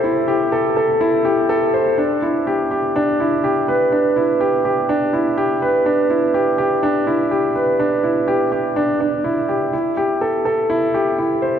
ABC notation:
X:1
M:4/4
L:1/8
Q:1/4=124
K:Ador
V:1 name="Grand piano"
E G A A E G A c | D E G G D E G B | D E G G D E G B | D E G G D E G B |
D E G G D D E G | E G A A E G E c |]